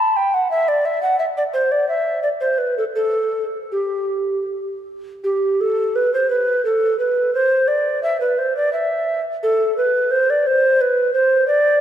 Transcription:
Already playing: A5
0.17 G5
0.34 F#5
0.51 E5
0.68 D5
0.85 E5
1.03 F#5
1.19 E5
1.37 D5
1.54 C5
1.72 D5
1.88 E5
2.23 D5
2.41 C5
2.58 B4
2.78 A4
2.96 A4
3.72 G4
5.24 G4
5.61 A4
5.96 B4
6.14 C5
6.30 B4
6.65 A4
6.99 B4
7.35 C5
7.68 D5
8.03 E5
8.20 B4
8.38 C5
8.57 D5
8.73 E5
9.43 A4
9.78 B4
10.11 C5
10.30 D5
10.46 C5
10.81 B4
11.14 C5
11.48 D5

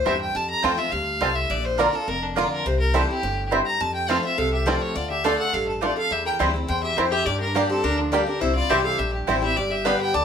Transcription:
0.05 E2 G2 C4 E4 G4 C5 E5 G5
0.21 G5
0.35 F2 A5
0.50 A#5
0.62 E2 F3 A3 C4 F4 C5 G5 A5
0.78 C4 F4 E5
0.92 D2 G2 F5
1.21 C2 A2 C4 F4 C5 A5
1.35 E5
1.50 A#1 A#2 D5
1.65 C5
1.78 D3 A#3 D4 F4 A#4 D5 A#5
1.93 D4 F4 A4
2.08 F1 F2 A#4
2.23 D4
2.36 D3 A#3 D4 F4 D5 A#5
2.52 A#4
2.66 C2 C3 C5
2.80 A#4
2.94 E3 G3 C4 E4 G4 A4 C5 G5
3.09 C4 E4 G4
3.23 G1 A2
3.51 G2 C4 E4 G4 C5 G5
3.66 A#5
3.80 F2 A5
3.95 G5
4.08 F3 A3 C4 F4 C5 F5 A5
4.23 C4 F4 E5
4.38 C2 C3 A4 F5
4.52 G4 E5
4.66 F3 A3 C4 F4 C5 D5 A5
4.80 E4 C#5
4.95 D2 D3 F4 D5
5.10 G4 E5
5.24 D3 A3 D4 F4 A4 D5 F5 A5
5.38 A4 F#5
5.53 A1 G2 A4 F5
5.68 A4, muted resonator guitar played with a steel bar stroke
5.81 F2 A3 D4 F4 D5 A5
5.97 A4 F5
6.11 E2 G4 E5
6.25 A#4 G5
6.39 D2 E3 G3 C4 E4 G4 C5 G5
6.54 C4 E4
6.68 E2 C5 G5
6.83 G4 E5
6.97 F2 C4 E4 G4 C5 G5
7.11 G4 E5
7.25 G2 G4 D5
7.40 D4 A#4
7.55 G3 A#3 D4 G4 D5 G5
7.69 C4 D4 G4 A4
7.83 D2 D3 D4 A#4
7.97 F3 D4
8.12 G3 A#3 D4 G4 D5 G5
8.26 D4 G4 A#4
8.40 C2 C3 E4 C5
8.55 F4 D5
8.69 C2 E3 G3 C4 E4 G4 C5 E5 G5
8.84 A4 F5
8.98 A#1 G2 G4 E5
9.13 G4, muted resonator guitar played with a steel bar stroke
9.27 A1 E3 G3 C4 E4 G4 C5 G5
9.42 C4 E4 G4 E5
9.56 G1 G2 G4 D5
9.70 G4 E5
9.85 D3 G3 B3 D4 G4 B4 D5 F5 G5
10.00 B4 G5
10.14 D2 D3 D5 A5

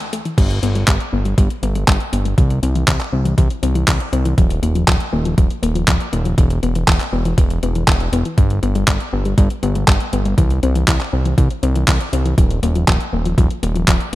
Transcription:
0.00 closed hi-hat
0.13 A3, closed hi-hat
0.25 E3, closed hi-hat
0.38 G1 G3, kick, closed hi-hat, crash
0.50 closed hi-hat
0.63 G1 B3, closed hi-hat
0.75 G3, closed hi-hat
0.88 G1 G3, kick, clap, closed hi-hat
1.00 closed hi-hat
1.13 G1 B3
1.25 G3, closed hi-hat
1.38 G1 G3, kick, closed hi-hat
1.50 closed hi-hat
1.63 G1 B3, closed hi-hat
1.75 G3, closed hi-hat
1.88 G1 G3, kick, clap, closed hi-hat
2.00 closed hi-hat
2.13 G1 B3, closed hi-hat
2.25 G3, closed hi-hat
2.38 C2 E3, kick, closed hi-hat
2.50 closed hi-hat
2.63 C2 C4, closed hi-hat
2.75 E3, closed hi-hat
2.88 C2 E3, kick, clap, closed hi-hat
3.00 clap, closed hi-hat
3.13 C2 C4
3.25 E3, closed hi-hat
3.38 C2 E3, kick, closed hi-hat
3.50 closed hi-hat
3.63 C2 C4, closed hi-hat
3.75 E3, closed hi-hat
3.88 C2 E3, kick, clap, closed hi-hat
4.00 closed hi-hat
4.13 C2 C4, closed hi-hat
4.25 E3, closed hi-hat
4.38 D#1 F3, kick, closed hi-hat
4.50 closed hi-hat
4.63 D#1 A#3, closed hi-hat
4.75 F3, closed hi-hat
4.88 D#1 F3, kick, clap, closed hi-hat
5.00 closed hi-hat
5.13 D#1 A#3
5.25 F3, closed hi-hat
5.38 D#1 F3, kick, closed hi-hat
5.50 closed hi-hat
5.63 D#1 A#3, closed hi-hat
5.75 F3, closed hi-hat
5.88 D#1 F3, kick, clap, closed hi-hat
6.00 closed hi-hat
6.13 D#1 A#3, closed hi-hat
6.25 F3, closed hi-hat
6.38 E1 E3, kick, closed hi-hat
6.50 closed hi-hat
6.63 E1 B3, closed hi-hat
6.75 E3, closed hi-hat
6.88 E1 E3, kick, clap, closed hi-hat
7.00 clap, closed hi-hat
7.13 E1 B3
7.25 E3, closed hi-hat
7.38 E1 E3, kick, closed hi-hat
7.50 closed hi-hat
7.63 E1 B3, closed hi-hat
7.75 E3, closed hi-hat
7.88 E1 E3, kick, clap, closed hi-hat
8.00 closed hi-hat
8.13 E1 B3, closed hi-hat
8.25 E3, closed hi-hat
8.38 G1 G3, kick, closed hi-hat
8.50 closed hi-hat
8.63 G1 B3, closed hi-hat
8.75 G3, closed hi-hat
8.88 G1 G3, kick, clap, closed hi-hat
9.00 closed hi-hat
9.13 G1 B3
9.25 G3, closed hi-hat
9.38 G1 G3, kick, closed hi-hat
9.50 closed hi-hat
9.63 G1 B3, closed hi-hat
9.75 G3, closed hi-hat
9.88 G1 G3, kick, clap, closed hi-hat
10.00 closed hi-hat
10.13 G1 B3, closed hi-hat
10.25 G3, closed hi-hat
10.38 C2 E3, kick, closed hi-hat
10.50 closed hi-hat
10.63 C2 C4, closed hi-hat
10.75 E3, closed hi-hat
10.88 C2 E3, kick, clap, closed hi-hat
11.01 clap, closed hi-hat
11.13 C2 C4
11.25 E3, closed hi-hat
11.38 C2 E3, kick, closed hi-hat
11.51 closed hi-hat
11.63 C2 C4, closed hi-hat
11.75 E3, closed hi-hat
11.88 C2 E3, kick, clap, closed hi-hat
12.01 closed hi-hat
12.13 C2 C4, closed hi-hat
12.25 E3, closed hi-hat
12.38 D#1 F3, kick, closed hi-hat
12.51 closed hi-hat
12.63 D#1 A#3, closed hi-hat
12.75 F3, closed hi-hat
12.88 D#1 F3, kick, clap, closed hi-hat
13.01 closed hi-hat
13.13 D#1 A#3
13.25 F3, closed hi-hat
13.38 D#1 F3, kick, closed hi-hat
13.51 closed hi-hat
13.63 D#1 A#3, closed hi-hat
13.75 F3, closed hi-hat
13.88 D#1 F3, kick, clap, closed hi-hat
14.00 closed hi-hat

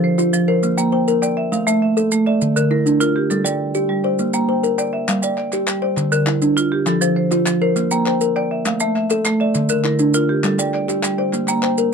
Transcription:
Already playing: F3 C5
0.04 C5
0.18 F4, maracas
0.33 F3, maracas
0.48 A#4 C5
0.63 A#3, maracas
0.77 A#3 G5, maracas
0.92 C5 G5
1.08 A#4, maracas
1.22 D5 G5, maracas
1.37 E5
1.52 A3 F5, maracas
1.67 A3 E5, maracas
1.82 E5
1.97 A4, maracas
2.12 A3, maracas
2.26 D5 E5
2.41 D3, maracas
2.56 D3 A#4, maracas
2.71 E4 A#4
2.86 D4, maracas
3.00 F4 A#4, maracas
3.16 G4
3.30 G3 A4, maracas
3.45 G3 D5, maracas
3.75 G4, maracas
3.89 G3
4.04 C5 D5
4.19 A#3, maracas
4.33 A#3 G5, maracas
4.49 C5 G5
4.63 A#4, maracas
4.78 D5 G5, maracas
4.93 E5
5.08 G3 F5, clap, maracas
5.22 G3 D5, maracas
5.38 D5, clap
5.52 G4, clap, maracas
5.67 G3, clap, maracas
5.82 C5 D5
5.97 D3, clap, maracas
6.12 D3 A#4, maracas
6.27 E4, clap
6.42 D4, maracas
6.57 F4, maracas
6.72 G4
6.86 F3 A4, clap, maracas
7.01 F3 C5, maracas
7.16 C5
7.31 F4, clap, maracas
7.46 F3, clap, maracas
7.62 A#4 C5
7.76 A#3, clap, maracas
7.91 A#3 G5, maracas
8.06 C5 G5, clap
8.21 A#4, maracas
8.36 D5 G5
8.51 E5
8.65 A3 F5, clap, maracas
8.80 A3 E5, maracas
8.95 E5, clap
9.10 A4, clap, maracas
9.25 A3, clap, maracas
9.40 D5 E5
9.54 D3, clap, maracas
9.69 D3 A#4, maracas
9.84 E4 A#4, clap
9.99 D4, maracas
10.14 F4 A#4, maracas
10.29 G4
10.44 G3 A4, clap, maracas
10.59 G3 D5, clap, maracas
10.74 D5, clap
10.88 G4, clap, maracas
11.03 G3, clap, maracas
11.18 C5 D5
11.33 A#3, clap, maracas
11.48 A#3 G5, clap, maracas
11.63 C5 G5, clap
11.78 A#4, maracas

